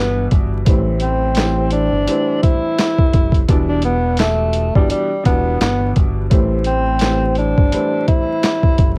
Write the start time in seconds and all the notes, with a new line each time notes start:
Already playing: G1 B2 E3 G3 B3 D4
0.31 G1, kick, closed hi-hat
0.65 A1 A2 E3 G3 C4, kick, closed hi-hat
1.00 C4, closed hi-hat
1.35 A2 E3 G3 C4, snare, clap, closed hi-hat, tambourine
1.71 D4, closed hi-hat
1.93 G1
2.07 A2 E3 G3 C4, closed hi-hat
2.43 E4, kick, closed hi-hat
2.78 snare, clap, closed hi-hat, tambourine
2.99 kick
3.14 F#1, kick, closed hi-hat
3.32 kick, closed hi-hat
3.48 E1 B2 E3 G3 D4, kick, closed hi-hat
3.69 D4
3.82 B3, closed hi-hat
4.17 A3, snare, clap, closed hi-hat, tambourine
4.53 closed hi-hat
4.75 G1 B2 E3 G3 D4, kick
4.90 G3, closed hi-hat
5.23 E1 B2 E3 G3 B3 D4, kick, closed hi-hat
5.61 G1 B3, snare, clap, closed hi-hat, tambourine
5.96 G1, kick, closed hi-hat
6.30 A1 A2 E3 G3 C4, kick, closed hi-hat
6.64 C4, closed hi-hat
6.99 A2 E3 G3 C4, snare, clap, closed hi-hat, tambourine
7.35 D4, closed hi-hat
7.58 G1, kick
7.71 A2 E3 G3 C4, closed hi-hat
8.08 E4, kick, closed hi-hat
8.43 snare, clap, closed hi-hat, tambourine
8.63 kick
8.78 F#1, kick, closed hi-hat